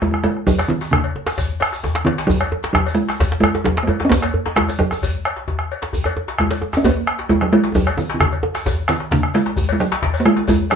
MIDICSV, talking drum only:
0, 0, Header, 1, 2, 480
1, 0, Start_track
1, 0, Key_signature, 6, "major"
1, 0, Tempo, 454890
1, 500, Time_signature, 4, 2, 24, 8
1, 11349, End_track
2, 0, Start_track
2, 0, Title_t, "Talking drum"
2, 0, Program_c, 0, 116
2, 19, Note_on_c, 0, 56, 82
2, 111, Note_off_c, 0, 56, 0
2, 118, Note_on_c, 0, 56, 57
2, 143, Note_off_c, 0, 56, 0
2, 248, Note_on_c, 0, 56, 99
2, 486, Note_off_c, 0, 56, 0
2, 492, Note_on_c, 0, 54, 94
2, 715, Note_off_c, 0, 54, 0
2, 721, Note_on_c, 0, 51, 81
2, 953, Note_off_c, 0, 51, 0
2, 962, Note_on_c, 0, 49, 72
2, 2160, Note_on_c, 0, 51, 89
2, 2176, Note_off_c, 0, 49, 0
2, 2394, Note_on_c, 0, 54, 96
2, 2410, Note_off_c, 0, 51, 0
2, 2874, Note_off_c, 0, 54, 0
2, 2880, Note_on_c, 0, 54, 77
2, 3102, Note_off_c, 0, 54, 0
2, 3109, Note_on_c, 0, 56, 97
2, 3571, Note_off_c, 0, 56, 0
2, 3592, Note_on_c, 0, 56, 86
2, 3845, Note_on_c, 0, 54, 74
2, 3861, Note_off_c, 0, 56, 0
2, 4035, Note_off_c, 0, 54, 0
2, 4041, Note_on_c, 0, 58, 59
2, 4088, Note_on_c, 0, 56, 88
2, 4104, Note_off_c, 0, 58, 0
2, 4272, Note_on_c, 0, 61, 68
2, 4287, Note_off_c, 0, 56, 0
2, 4321, Note_on_c, 0, 58, 91
2, 4336, Note_off_c, 0, 61, 0
2, 4813, Note_on_c, 0, 56, 78
2, 4828, Note_off_c, 0, 58, 0
2, 5046, Note_off_c, 0, 56, 0
2, 5052, Note_on_c, 0, 54, 87
2, 5975, Note_off_c, 0, 54, 0
2, 6751, Note_on_c, 0, 56, 81
2, 7143, Note_on_c, 0, 61, 71
2, 7158, Note_off_c, 0, 56, 0
2, 7231, Note_on_c, 0, 58, 86
2, 7247, Note_off_c, 0, 61, 0
2, 7696, Note_on_c, 0, 56, 87
2, 7712, Note_off_c, 0, 58, 0
2, 7829, Note_on_c, 0, 54, 90
2, 7845, Note_off_c, 0, 56, 0
2, 7936, Note_off_c, 0, 54, 0
2, 7942, Note_on_c, 0, 56, 99
2, 8179, Note_on_c, 0, 54, 89
2, 8195, Note_off_c, 0, 56, 0
2, 8419, Note_on_c, 0, 51, 71
2, 8435, Note_off_c, 0, 54, 0
2, 8591, Note_off_c, 0, 51, 0
2, 8591, Note_on_c, 0, 51, 51
2, 8653, Note_on_c, 0, 49, 61
2, 8668, Note_off_c, 0, 51, 0
2, 9374, Note_off_c, 0, 49, 0
2, 9380, Note_on_c, 0, 51, 84
2, 9630, Note_on_c, 0, 49, 78
2, 9646, Note_off_c, 0, 51, 0
2, 9858, Note_off_c, 0, 49, 0
2, 9865, Note_on_c, 0, 56, 93
2, 10241, Note_off_c, 0, 56, 0
2, 10261, Note_on_c, 0, 56, 76
2, 10343, Note_on_c, 0, 54, 105
2, 10359, Note_off_c, 0, 56, 0
2, 10763, Note_on_c, 0, 58, 76
2, 10778, Note_off_c, 0, 54, 0
2, 10821, Note_on_c, 0, 56, 117
2, 10837, Note_off_c, 0, 58, 0
2, 11059, Note_off_c, 0, 56, 0
2, 11068, Note_on_c, 0, 56, 90
2, 11174, Note_off_c, 0, 56, 0
2, 11310, Note_on_c, 0, 54, 104
2, 11349, Note_off_c, 0, 54, 0
2, 11349, End_track
0, 0, End_of_file